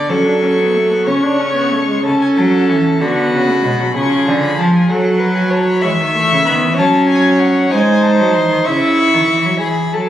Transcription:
Already playing: violin D5
0.08 cello F#3, viola C#4, violin A4 C#6
0.25 viola D4
0.42 viola C#4
0.58 viola B3
0.74 viola A3
0.90 viola B3
1.06 cello C#3, viola C#4, violin C#5 C#6
1.23 viola D4
1.39 viola C#4
1.56 viola B3
1.72 viola A3
1.88 viola G#3
2.04 cello C#3, viola C#4, violin A4 A5
2.21 violin G#5
2.37 cello F#3, violin A5
2.54 violin F#5
2.68 cello E3, violin G#5
2.85 violin A5
3.01 cello D3, viola B3, violin F#4 B5
3.10 violin C#6
3.16 violin B5
3.33 cello C#3
3.48 viola A3
3.63 cello B2, viola G#3
3.80 viola F#3
3.95 cello C#3, viola F3, violin G#4 C#6
4.27 cello D3
4.42 violin B5
4.58 cello F3, violin A5
4.74 violin G#5
4.89 viola F#3, cello F#3, violin A4 F#5
5.19 violin B4
5.35 violin G#5
5.50 violin C#5 A5
5.68 violin B5
5.82 cello E3, viola G#3, violin E5 C#6
6.00 cello D#3
6.13 cello E3, viola A3, violin C#6
6.31 cello C#3
6.45 cello D#3, viola B3, violin B5
6.62 cello E3
6.76 cello F#3, viola C#4, violin C#5 A5
7.09 violin G#5
7.39 violin F#5
7.71 cello G#3, viola D#4, violin C5 G#5
8.02 violin A5
8.19 cello F#3
8.33 cello E3, violin C6
8.51 cello D#3
8.64 cello C#3, viola E4, violin E5 C#6
9.13 cello D#3
9.30 cello E3
9.45 cello F#3
9.60 cello E3, violin G#4 B5
9.93 cello F#3, violin A4 A5

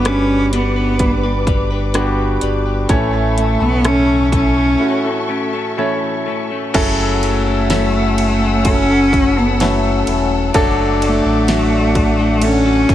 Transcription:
Already playing: sub bass G1, grand piano G2 D3 G3 B3 D4 F#4 B4, string section B4 D6
0.04 grand piano G3 B3 B4, clean electric guitar G3 G4 B4, cello C#4, cross-stick, closed hi-hat
0.53 clean electric guitar G3 D4 G4 B4, cello B3, closed hi-hat
0.76 clean electric guitar D4 G4 B4
0.99 grand piano G3 B3 D4 B4, kick, closed hi-hat
1.23 clean electric guitar D4 G4 B4
1.47 clean electric guitar G3 D4 G4 B4, kick, closed hi-hat
1.71 clean electric guitar D4 G4 B4
1.94 grand piano G3 B3 D4 F#4, clean electric guitar G3 D4 G4 B4, cross-stick, closed hi-hat
2.01 grand piano G4
2.41 sub bass G1, clean electric guitar G3 D4 G4 B4, closed hi-hat
2.66 clean electric guitar D4 G4 B4
2.89 sub bass A1, clean electric guitar A2 E3 A3 C#4 E4 A4, grand piano A2 E3 A3 C#4 E4 C#5, cello A3, string section A4 E5 C#6, kick, closed hi-hat
3.13 clean electric guitar A3 C#4 E4 A4, cross-stick
3.37 grand piano A3 C#4 E4 C#5, closed hi-hat
3.60 sub bass B1, clean electric guitar A3 C#4 E4 A4, cello B3
3.84 clean electric guitar A2 E3 A3 C#4 E4 A4, grand piano A3 C#4 E4 A4, cello C#4, cross-stick, closed hi-hat
4.32 clean electric guitar A3 C#4 E4 A4, cello C#4, kick, closed hi-hat
4.56 clean electric guitar A3 C#4 E4 A4
4.80 grand piano A3 C#4 E4 F#4
5.04 clean electric guitar A3 C#4 E4 A4
5.29 clean electric guitar A3 C#4 E4 A4
5.53 clean electric guitar A3 C#4 E4 A4
5.77 clean electric guitar A2 E3 A3 C#4 E4 A4, grand piano A3 C#4 E4 C#5
6.26 clean electric guitar A3 C#4 E4 A4
6.50 clean electric guitar A3 C#4 E4 A4
6.74 sub bass F#1, grand piano C#3 F#3 C#4 E4 A4, clean electric guitar F#3 A3 C#4 E4 A4, french horn section C#4, string section A4 F#5 E6, kick, crash, ride
7.22 clean electric guitar A3 C#4 E4 A4, cello A3, ride
7.46 clean electric guitar C#4 E4 A4
7.70 grand piano F#3 C#4 E4 A4, clean electric guitar F#3 A3 C#4 E4 A4, snare, ride
7.94 clean electric guitar C#4 E4 A4
8.18 ride
8.42 clean electric guitar C#4 E4 A4
8.65 grand piano F#3 C#4 E4 A4, cello C#4, kick, ride
8.89 clean electric guitar C#4 E4 A4
9.13 clean electric guitar A3 C#4 E4 A4, kick, ride
9.37 cello B3, clean electric guitar C#4 E4 A4
9.60 clean electric guitar F#3 A3 C#4 E4 A4, grand piano F#3 C#4 E4 B4, cello A3, snare, ride
10.07 sub bass E1, clean electric guitar A3 C#4 E4 A4, ride
10.54 sub bass F#1, clean electric guitar F#3 A3 D4 F#4 A4, grand piano F#3 A3 D4 A4, french horn section D4, string section F#5 D6, kick, ride
11.01 clean electric guitar A3 D4 F#4 A4, cello A3, ride
11.25 sub bass A1, clean electric guitar D4 F#4 A4
11.48 grand piano F#3 A3 D4 F#4, clean electric guitar F#3 A3 D4 F#4 A4, snare, ride
11.72 clean electric guitar D4 F#4 A4
11.95 kick, ride
12.19 clean electric guitar D4 F#4 A4
12.42 grand piano D3 F#3 A3 A4, cello C#4, string section C#6, ride
12.66 clean electric guitar D4 F#4 A4
12.89 sub bass F#1, clean electric guitar A3 D4 F#4 A4, kick, ride

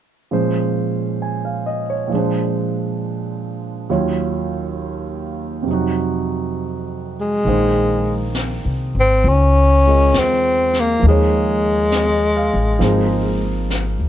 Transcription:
0.31 grand piano A#2 F3 G#3 C#4 C5
1.22 grand piano G#5
1.45 grand piano F5
1.66 grand piano D#5
1.90 grand piano C#5
2.07 grand piano A#2 F3
2.12 grand piano G#3 D4
2.17 grand piano C5
3.90 grand piano D#2 D#3 F#3 F4 C#5
5.62 grand piano F2 C3
5.68 grand piano F#3 D#4
5.73 grand piano F#4
7.21 tenor saxophone G#3
7.45 upright bass A#1, grand piano D#3 A#3 D#4 G#4 C5, brush sweep
8.34 snare, hi-hat pedal
8.65 upright bass C2
8.95 upright bass G#1
9.00 tenor saxophone C4
9.24 upright bass C#2, brush sweep
9.29 tenor saxophone C#4
9.86 grand piano G#3 F4 A#4 D#5
10.14 upright bass E2, snare, hi-hat pedal
10.19 tenor saxophone C4
10.73 snare
10.80 tenor saxophone A#3
10.99 upright bass D#2, grand piano F3 A#3, brush sweep
11.05 tenor saxophone G#3, grand piano D#4 G#4
11.10 grand piano C#5
11.92 grand piano D#5, snare, hi-hat pedal
12.37 grand piano F5
12.54 upright bass A1
12.79 upright bass G#1, grand piano F3 A#3 D#4 G#4, brush sweep, snare
12.84 grand piano C5
13.70 snare, hi-hat pedal
13.99 upright bass D#2

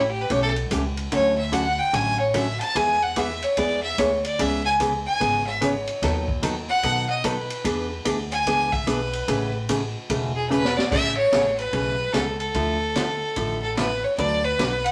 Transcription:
Already playing: upright bass A1
0.01 fiddle E4
0.10 fiddle G4
0.21 fiddle B4
0.30 upright bass B1, hollow-body jazz guitar E3 A3 C#4 G4, fiddle C#5, kick, ride
0.42 fiddle A4
0.56 ride
0.71 upright bass C#2, hollow-body jazz guitar E3 A3 C#4 G4, kick, hi-hat pedal, ride
0.97 ride
1.12 upright bass D2, hollow-body jazz guitar D3 F#3 A3 C#4 F#4, fiddle C#5, kick, ride
1.38 fiddle E5
1.52 hollow-body jazz guitar D3 F#3 A3 C#4 F#4, fiddle F#5, kick, hi-hat pedal, ride
1.79 fiddle G5
1.93 upright bass A1, hollow-body jazz guitar D3 F#3 A3 C#4 F#4, fiddle G#5, kick, ride
2.20 fiddle C#5
2.34 hollow-body jazz guitar D3 F#3 A3 C#4 F#4, fiddle E5, kick, hi-hat pedal, ride
2.60 fiddle A5, ride
2.75 upright bass E2, hollow-body jazz guitar E3 G#3 B3 E4 G#4, fiddle G#5, kick, ride
3.03 fiddle F#5
3.16 hollow-body jazz guitar E3 G#3 B3 E4 G#4, fiddle E5, kick, hi-hat pedal, ride
3.42 fiddle C#5, ride
3.57 upright bass E2, hollow-body jazz guitar E3 G#3 B3 E4 G#4, fiddle D5, kick, ride
3.83 fiddle E5
3.98 upright bass D2, hollow-body jazz guitar E3 G#3 B3 E4 G#4, fiddle C#5, kick, hi-hat pedal, ride
4.24 fiddle D5, ride
4.39 upright bass C#2, hollow-body jazz guitar C#3 E3 B3 C#4 G#4, fiddle E5, kick, ride
4.65 fiddle G#5
4.80 hollow-body jazz guitar C#3 E3 B3 C#4 G#4, kick, hi-hat pedal, ride
5.07 fiddle G#5
5.20 upright bass G#1, hollow-body jazz guitar C#3 E3 B3 C#4 G#4, kick, ride
5.47 fiddle E5
5.61 hollow-body jazz guitar C#3 E3 B3 C#4 G#4, fiddle C#5, kick, hi-hat pedal, ride
5.87 ride
6.02 upright bass D#2, hollow-body jazz guitar D#3 F#3 B3 D#4 A4, kick, snare, ride
6.28 kick
6.43 hollow-body jazz guitar D#3 F#3 B3 D#4 A4, kick, hi-hat pedal, ride
6.69 fiddle F#5
6.83 upright bass B2, hollow-body jazz guitar D#3 F#3 B3 D#4 A4, kick, ride
7.10 fiddle D#5
7.24 hollow-body jazz guitar D#3 F#3 B3 D#4 A4, fiddle B4, kick, hi-hat pedal, ride
7.50 ride
7.64 upright bass E2, hollow-body jazz guitar E3 B3 D4 G#4, kick, ride
8.05 upright bass D2, hollow-body jazz guitar E3 B3 D4 G#4, kick, hi-hat pedal, ride
8.32 fiddle G#5, ride
8.46 upright bass C#2, hollow-body jazz guitar E3 B3 D4 G#4, kick, ride
8.72 fiddle E5, kick
8.87 upright bass B1, hollow-body jazz guitar E3 B3 D4 G#4, fiddle B4, kick, hi-hat pedal, ride
9.13 ride
9.28 upright bass A1, hollow-body jazz guitar C#3 E3 A3 C#4 G#4, kick, ride
9.69 hollow-body jazz guitar C#3 E3 A3 C#4 G#4, kick, hi-hat pedal, ride
10.10 upright bass E1, hollow-body jazz guitar C#3 E3 A3 C#4 G#4, kick, ride
10.36 fiddle G#4
10.50 hollow-body jazz guitar C#3 E3 A3 C#4 G#4, fiddle B4, hi-hat pedal
10.65 snare
10.77 fiddle D5, snare
10.91 upright bass A1, hollow-body jazz guitar C#3 E3 A3 C#4 G#4, fiddle E5, kick, crash
11.17 fiddle C#5
11.32 upright bass A1, hollow-body jazz guitar C#3 E3 A3 C#4 G#4, snare, hi-hat pedal, ride
11.58 fiddle B4, ride
11.73 upright bass B1, hollow-body jazz guitar C#3 E3 A3 C#4 G#4, kick, ride
12.13 upright bass C#2, hollow-body jazz guitar C#3 E3 A3 C#4 G#4, fiddle A4, snare, hi-hat pedal, ride
12.40 fiddle A4, ride
12.54 upright bass D2, hollow-body jazz guitar D3 F3 A3 E4, kick, ride
12.95 hollow-body jazz guitar D3 F3 A3 E4, snare, hi-hat pedal, ride
13.36 upright bass A1, hollow-body jazz guitar D3 F3 A3 E4, kick, ride
13.62 fiddle A4
13.77 hollow-body jazz guitar D3 F3 A3 E4, fiddle B4, snare, hi-hat pedal, ride
14.04 fiddle C#5
14.18 upright bass D2, hollow-body jazz guitar D3 F#3 A3 D4 F#4 B4, fiddle D5, kick, ride
14.45 fiddle B4
14.59 upright bass B1, hollow-body jazz guitar D3 F#3 A3 D4 F#4 B4, snare, hi-hat pedal, ride
14.85 fiddle F#5, ride

